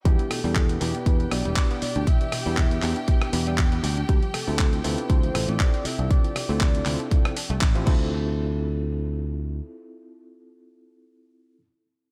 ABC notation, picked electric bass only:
X:1
M:4/4
L:1/16
Q:"Swing 16ths" 1/4=119
K:Ddor
V:1 name="Picked electric bass" clef=bass
E,, z2 E,,3 E,, z E,, z B,,, E,,, z3 D,, | z3 E,,3 E,, z3 E,,4 D,, z | D,, z2 D,,3 D,, z D,, z A,,, A,,, z3 C,, | z3 D,,3 D,, z4 C,, A,,,2 D,,2- |
D,,12 z4 | z16 |]